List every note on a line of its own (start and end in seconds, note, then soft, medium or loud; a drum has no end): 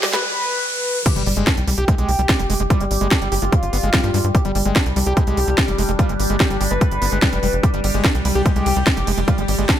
0.00 0.24 G3 medium
0.00 0.08 G3 medium
0.00 0.24 G4 medium
0.00 0.06 G4 medium
0.00 snare loud
0.00 open hi-hat loud
0.00 riser medium
0.13 0.16 G#3 medium
0.13 0.98 B4 loud
0.13 snare medium
0.13 closed hi-hat soft
0.13 shekere medium
1.06 9.80 G3 medium
1.06 1.09 G3 medium
1.06 1.11 G4 loud
1.06 4.37 G4 medium
1.06 kick loud
1.06 closed hi-hat medium
1.06 crash loud
1.06 sub drop medium
1.16 1.23 G1 medium
1.16 1.21 G3 medium
1.16 1.23 G3 medium
1.16 closed hi-hat medium
1.26 1.34 G1 loud
1.26 1.31 G3 medium
1.26 1.29 G3 medium
1.26 open hi-hat loud
1.37 1.44 G1 medium
1.37 1.41 G3 medium
1.37 1.48 G#3 medium
1.37 closed hi-hat medium
1.47 1.52 B3 medium
1.47 1.52 D4 medium
1.47 kick loud
1.47 snare loud
1.47 closed hi-hat medium
1.57 1.64 C2 medium
1.57 1.62 G3 medium
1.57 closed hi-hat medium
1.67 1.75 C2 loud
1.67 1.72 G3 medium
1.67 1.70 G3 loud
1.67 open hi-hat loud
1.78 1.85 C2 medium
1.78 2.62 G4 loud
1.78 1.85 G4 loud
1.78 closed hi-hat medium
1.88 1.95 G#3 medium
1.88 kick loud
1.88 closed hi-hat medium
1.98 2.06 C2 medium
1.98 2.10 G#3 medium
1.98 closed hi-hat medium
2.09 2.16 C2 loud
2.09 2.11 G3 medium
2.09 open hi-hat loud
2.19 2.26 C2 medium
2.19 2.22 G3 medium
2.19 closed hi-hat medium
2.29 kick loud
2.29 snare loud
2.29 closed hi-hat medium
2.39 2.47 F1 medium
2.39 2.42 G3 medium
2.39 closed hi-hat medium
2.50 2.57 F1 loud
2.50 2.54 G#3 medium
2.50 open hi-hat loud
2.60 2.67 F1 medium
2.60 2.63 G#3 medium
2.60 closed hi-hat medium
2.70 2.82 G3 medium
2.70 2.75 F4 loud
2.70 kick loud
2.70 closed hi-hat medium
2.81 2.88 G1 medium
2.81 2.85 G3 medium
2.81 2.85 G#3 medium
2.81 closed hi-hat medium
2.91 2.98 G#1 loud
2.91 2.96 G3 medium
2.91 open hi-hat loud
3.01 3.08 G1 medium
3.01 3.06 G3 medium
3.01 3.08 G#3 medium
3.01 closed hi-hat medium
3.11 3.16 G3 medium
3.11 3.16 D4 medium
3.11 kick loud
3.11 snare loud
3.11 closed hi-hat medium
3.22 3.29 G1 medium
3.22 3.28 G3 medium
3.22 3.26 G3 medium
3.22 closed hi-hat medium
3.32 3.39 G1 loud
3.32 3.37 G3 medium
3.32 3.35 G4 medium
3.32 open hi-hat loud
3.42 3.49 G1 medium
3.42 3.45 G#3 medium
3.42 4.26 F4 loud
3.42 closed hi-hat medium
3.52 3.55 G3 medium
3.52 kick loud
3.52 closed hi-hat medium
3.63 3.70 G1 medium
3.63 closed hi-hat medium
3.73 3.80 G1 loud
3.73 3.78 B3 medium
3.73 open hi-hat loud
3.83 3.90 G1 medium
3.83 3.90 G#3 medium
3.83 closed hi-hat medium
3.94 4.00 G3 loud
3.94 kick loud
3.94 snare loud
3.94 closed hi-hat medium
4.04 4.11 G2 medium
4.04 4.11 G3 medium
4.04 closed hi-hat medium
4.14 4.21 G2 loud
4.14 4.19 G3 medium
4.14 open hi-hat loud
4.24 4.32 G2 medium
4.24 closed hi-hat medium
4.35 4.37 G3 medium
4.35 7.65 D4 medium
4.35 4.39 G4 loud
4.35 kick loud
4.35 closed hi-hat medium
4.45 4.52 G1 medium
4.45 4.52 G3 medium
4.45 4.50 G3 medium
4.45 closed hi-hat medium
4.55 4.62 G1 loud
4.55 4.58 G3 medium
4.55 4.60 G3 medium
4.55 open hi-hat loud
4.65 4.73 G1 medium
4.65 4.70 G3 medium
4.65 4.77 G#3 medium
4.65 closed hi-hat medium
4.76 4.80 B3 medium
4.76 4.80 D4 medium
4.76 kick loud
4.76 snare loud
4.76 closed hi-hat medium
4.86 4.93 C2 medium
4.86 4.91 G3 medium
4.86 closed hi-hat medium
4.96 5.03 C2 loud
4.96 4.99 G3 loud
4.96 5.01 G3 medium
4.96 open hi-hat loud
5.07 5.14 C2 medium
5.07 5.13 G4 loud
5.07 5.91 G4 loud
5.07 closed hi-hat medium
5.17 5.24 G#3 medium
5.17 kick loud
5.17 closed hi-hat medium
5.27 5.34 C2 medium
5.27 5.39 G#3 medium
5.27 closed hi-hat medium
5.37 5.45 C2 loud
5.37 5.40 G3 medium
5.37 open hi-hat loud
5.48 5.55 C2 medium
5.48 5.50 G3 medium
5.48 closed hi-hat medium
5.58 kick loud
5.58 snare loud
5.58 closed hi-hat medium
5.68 5.75 F1 medium
5.68 5.71 G3 medium
5.68 closed hi-hat medium
5.78 5.86 F1 loud
5.78 5.83 G#3 medium
5.78 open hi-hat loud
5.89 5.96 F1 medium
5.89 5.91 G#3 medium
5.89 closed hi-hat soft
5.99 6.11 G3 medium
5.99 6.04 F4 loud
5.99 kick loud
5.99 closed hi-hat medium
6.09 6.17 G1 medium
6.09 6.14 G3 medium
6.09 6.14 G#3 medium
6.09 closed hi-hat medium
6.20 6.27 G#1 loud
6.20 6.24 G3 medium
6.20 open hi-hat loud
6.30 6.37 G1 medium
6.30 6.35 G3 medium
6.30 6.37 G#3 medium
6.30 closed hi-hat medium
6.40 6.45 G3 medium
6.40 6.45 G4 medium
6.40 kick loud
6.40 snare loud
6.40 closed hi-hat medium
6.50 6.58 G1 medium
6.50 6.55 G3 medium
6.50 6.57 G3 medium
6.50 closed hi-hat soft
6.61 6.68 G1 loud
6.61 6.65 G3 medium
6.61 6.63 G4 medium
6.61 open hi-hat loud
6.71 6.78 G1 medium
6.71 6.74 G#3 medium
6.71 7.55 B4 loud
6.81 6.84 G3 medium
6.81 kick loud
6.81 closed hi-hat medium
6.91 6.99 G1 medium
6.91 closed hi-hat medium
7.02 7.09 G1 loud
7.02 7.06 B3 medium
7.02 open hi-hat loud
7.12 7.19 G1 medium
7.12 7.19 G#3 medium
7.12 closed hi-hat soft
7.22 7.29 G3 loud
7.22 kick loud
7.22 snare loud
7.22 closed hi-hat medium
7.33 7.40 F1 medium
7.33 7.39 G3 medium
7.33 closed hi-hat medium
7.43 7.50 F1 loud
7.43 7.47 G3 medium
7.43 open hi-hat loud
7.53 7.60 F1 medium
7.53 closed hi-hat soft
7.63 7.66 G3 medium
7.63 7.68 G4 loud
7.63 9.80 G4 medium
7.63 kick loud
7.63 closed hi-hat medium
7.74 7.81 G1 medium
7.74 7.78 G3 medium
7.74 7.81 G3 medium
7.74 closed hi-hat medium
7.84 7.91 G1 loud
7.84 7.89 G3 medium
7.84 7.87 G3 medium
7.84 open hi-hat loud
7.84 ride medium
7.94 8.01 G1 loud
7.94 7.99 G3 medium
7.94 8.06 G#3 medium
7.94 closed hi-hat medium
8.04 8.09 B3 medium
8.04 8.09 D4 medium
8.04 kick loud
8.04 snare loud
8.04 closed hi-hat medium
8.15 8.22 C2 medium
8.15 8.19 G3 medium
8.15 closed hi-hat medium
8.25 8.32 C2 loud
8.25 8.28 G3 loud
8.25 8.30 G3 medium
8.25 open hi-hat loud
8.25 ride medium
8.35 8.43 C2 medium
8.35 8.42 G4 loud
8.35 9.20 G4 loud
8.35 closed hi-hat medium
8.46 8.52 G#3 medium
8.46 kick loud
8.46 closed hi-hat medium
8.56 8.63 C2 medium
8.56 8.68 G#3 medium
8.56 closed hi-hat medium
8.66 8.73 C2 loud
8.66 8.69 G3 medium
8.66 open hi-hat loud
8.66 ride medium
8.76 8.84 C2 medium
8.76 8.79 G3 medium
8.76 closed hi-hat soft
8.87 kick loud
8.87 snare loud
8.87 closed hi-hat medium
8.97 9.04 F1 medium
8.97 9.00 G3 medium
8.97 closed hi-hat medium
9.07 9.14 F1 loud
9.07 9.12 G#3 medium
9.07 open hi-hat loud
9.07 ride medium
9.17 9.25 F1 medium
9.17 9.20 G#3 medium
9.17 closed hi-hat medium
9.28 9.40 G3 medium
9.28 9.33 F4 loud
9.28 kick loud
9.28 closed hi-hat medium
9.38 9.45 G1 medium
9.38 9.43 G3 medium
9.38 9.43 G#3 medium
9.38 closed hi-hat medium
9.48 9.56 G#1 loud
9.48 9.53 G3 medium
9.48 open hi-hat loud
9.48 ride medium
9.59 9.66 G1 medium
9.59 9.63 G3 medium
9.59 9.65 G#3 medium
9.59 closed hi-hat medium
9.69 9.73 G3 medium
9.69 9.74 D4 medium
9.69 kick loud
9.69 snare loud
9.69 closed hi-hat medium